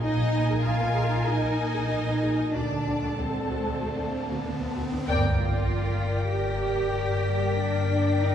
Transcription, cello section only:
0.01 D#4
0.65 F4
1.29 D#4
2.55 D4
3.19 C4
5.39 F4
6.33 G4
7.59 D4
8.23 D#4

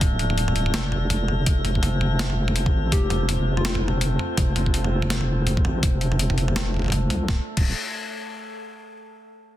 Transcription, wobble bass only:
0.01 D1
0.48 D1
0.74 F1
1.47 F1
2.74 A1
2.92 F1
3.39 F1
4.38 F1
5.65 A1
5.83 F1
6.30 F1
7.10 C2
7.28 D1
7.57 D1

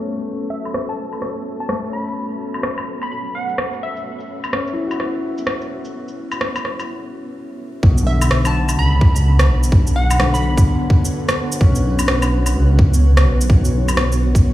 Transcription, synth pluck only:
0.50 E5
0.89 A5
1.60 A5
1.93 B5
3.03 B5
3.12 B5
3.35 F#5
3.83 E5
8.07 E5
8.47 A5
8.79 B5
9.96 F#5
10.34 B5
10.43 B5

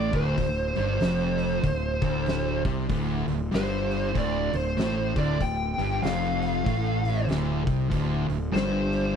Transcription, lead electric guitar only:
Already playing: D5
0.15 C5
3.55 C5
4.18 D5
4.55 C5
5.18 D5
5.42 G5
6.03 F5
8.53 C5

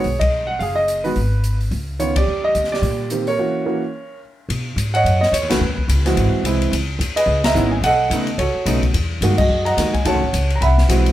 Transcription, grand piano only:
Already playing: G#4 C#5
0.19 D#5
0.47 F#5
0.59 G#4 F5
0.75 D#5
1.04 D#3 G#3 B3 F#4 B4
1.99 D#3 B3 C#4 F4 C#5
2.17 G4 D5
2.44 D#5
2.72 G4 D5
3.11 D#3 A#3 C4 G4
3.28 A#4 C#5
3.39 E3 A#3 C#4 F#4
3.66 E3 A#3 C#4 F#4
4.94 C#5 D#5 F#5
5.21 D#5
5.33 C#5
5.49 D#3 A3 C#4 F#4 B4
6.05 E3 G#3 C4 F#4
6.45 E3 G#3 C4 E4
7.16 G#4 B4 D#5
7.44 D#5 E5 A#5
7.55 D#3 B3 C#4 E4
7.71 G#5
7.84 A4 D#5 F#5
8.12 C#3 A3 B3 D#4
8.38 F#4 A4 C#5
8.66 C#3 A3 B3 D#4
9.23 D#3 G#3 A#3 F#4
9.38 F#4 G#4 D#5
9.65 D#5 F#5 A#5
9.78 D#3 G#3 A#3 F#4
9.94 G#5
10.05 D#3 A3 C#4 F#4 C#5 F#5 A5
10.56 A#5
10.62 E5 F#5 B5
10.89 E3 G#3 C4 F#4

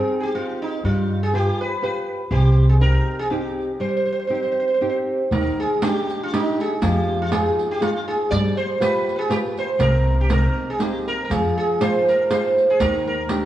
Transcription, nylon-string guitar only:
Already playing: C4 D#4 G5
0.34 C4 D#4 G4
0.85 G3
1.33 F4 G4 B4
1.82 F4 G4 B4
2.31 C3
2.80 C4 D#4 G4
3.31 C4 D#4 G4
3.80 G3
4.30 C4 D#4 G4
4.81 C4 D#4 G4
5.32 D#3
5.82 D4 D#4 G4
6.32 D4 D#4 G4
6.82 F3
7.31 D#4 F4 G#4
7.81 D#4 F4 G#4
8.31 G3
8.80 F4 G4 B4
9.29 F4 G4 B4
9.79 C3
10.29 A#3 C4 D#4
10.79 A#3 C4 D#4
11.30 F3
11.80 D#4 F4 G#4
12.30 D#4 F4 G#4
12.80 D#3
13.30 D4 D#4 G4

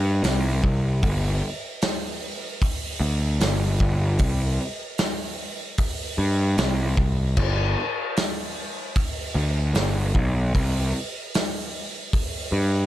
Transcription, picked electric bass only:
Already playing: G2
0.23 C2
0.64 C2
1.03 G1
3.00 D2
3.40 G1
3.80 G1
4.19 C2
6.18 G2
6.58 C2
6.97 C2
7.37 G1
9.35 D2
9.74 G1
10.15 B1
10.55 C2
12.52 G2

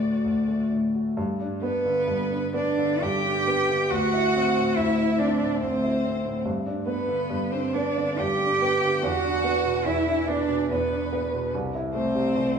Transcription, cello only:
Already playing: F#4
1.62 B3
2.55 D4
3.02 G4
3.90 F#4
4.77 E4
5.19 D4
5.61 C4
6.86 B3
7.51 C4
7.73 D4
8.18 G4
9.02 F#4
9.85 E4
10.27 D4
10.70 B3
11.94 C4

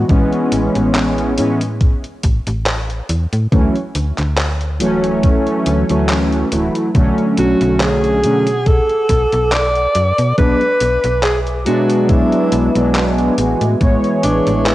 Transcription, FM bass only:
0.09 A1
0.52 A1
0.76 A1
1.38 A2
2.24 A1
2.47 A1
3.09 E2
3.33 A2
3.52 D2
3.95 D2
4.19 D2
4.81 D1
5.67 D2
5.90 D2
6.52 D1
6.95 B1
7.38 B1
7.61 B1
8.24 B2
9.09 B1
9.33 B1
9.95 F#2
10.19 B2
10.38 B1
10.81 B1
11.04 B1
11.67 B2
12.53 B1
12.76 B1
13.38 A1
13.61 A2
13.81 A1
14.24 A1
14.47 A1

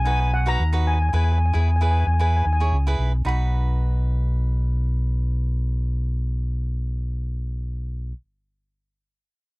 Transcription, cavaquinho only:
0.05 D#4 F#4 B4
0.46 D#4 F#4 B4
0.73 D#4 F#4 B4
1.13 E4 G#4 B4
1.53 E4 G#4 B4
1.81 E4 G#4 B4
2.19 E4 G#4 B4
2.60 E4 G#4 C#5
2.87 E4 G#4 B4
3.25 D#4 F#4 B4

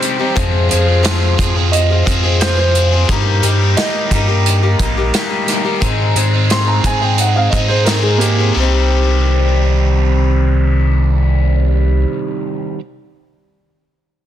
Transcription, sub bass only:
0.37 F2
0.73 F2
1.39 F2
2.07 F2
3.10 G2
3.43 G2
4.11 G2
4.79 A#1
5.82 G#2
6.15 G#2
6.84 G#2
7.53 G#2
8.56 C2

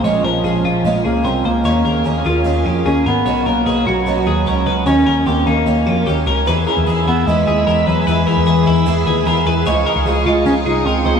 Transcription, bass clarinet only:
0.04 G#3
0.25 F3
0.85 G#3
1.05 A#3
1.25 C4
1.45 A#3
2.86 C#4
3.06 B3
3.47 A#3
3.86 F#3
4.86 C#4
5.26 C4
5.47 A#3
7.07 B3
7.27 G#3
7.87 F#3
8.07 E3
10.26 G#3
10.45 C#4
10.66 D#4
10.86 C4
11.15 A#3

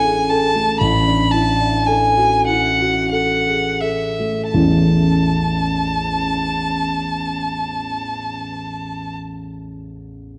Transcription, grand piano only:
Already playing: A1 C#4 D4 E4 A4
0.04 G#4
0.31 A4
0.55 A3
0.81 A1
1.07 D4
1.34 E4
1.60 D4
1.88 A4
2.17 F#4
2.48 E4
2.81 F#4
3.12 A4
3.47 G#4
3.83 A4
4.20 A3
4.54 A1 E2 E3 A3 C#4 E4

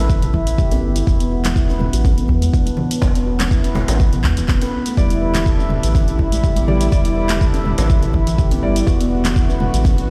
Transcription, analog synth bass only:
0.00 A1
0.83 G1
1.07 E1
1.93 A1
2.29 E2
3.02 E1
3.88 A1
4.24 E2
4.37 E1
4.97 E1
5.84 A1
6.92 E1
7.78 A1
8.63 G1
8.87 E1
9.74 A1

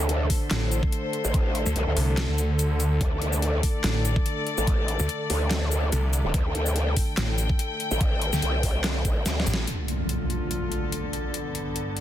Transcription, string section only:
Already playing: D3 A3 A4 C5
3.01 D5
6.34 G5
9.67 D2 D3 F4 A4
11.34 G2 B3

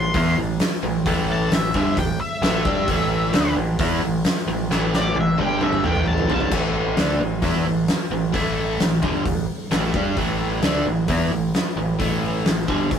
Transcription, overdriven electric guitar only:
0.15 E3 B3 E4
0.38 A2 E3
0.83 A2 E3
1.06 A2 E3 A3
1.52 A2 E3
1.75 G2 D3 G3
1.98 A2 E3
2.43 A2 E3 A3
2.66 G3 D4 G4
2.88 A2 E3 A3
3.33 D3 A3 D4
3.57 A2 E3
3.80 E3 B3 E4
4.03 A2 E3
4.48 A2 E3
4.71 A2 E3 A3
5.15 A2 E3
5.38 G2 D3 G3
5.60 G2 D3 G3
5.84 A2 E3 A3
6.29 G2 D3 G3
6.51 A2 E3 A3
6.97 D3 A3 D4
7.21 A2 E3
7.42 E3 B3 E4
7.65 A2 E3
8.11 A2 E3
8.32 A2 E3 A3
8.81 A2 E3
9.02 G2 D3 G3
9.26 A2 E3
9.71 A2 E3 A3
9.94 G3 D4 G4
10.17 A2 E3 A3
10.63 D3 A3 D4
10.87 A2 E3
11.08 E3 B3 E4
11.31 A2 E3
11.77 A2 E3
11.99 A2 E3 A3
12.46 A2 E3
12.68 G2 D3 G3
12.92 A2 E3

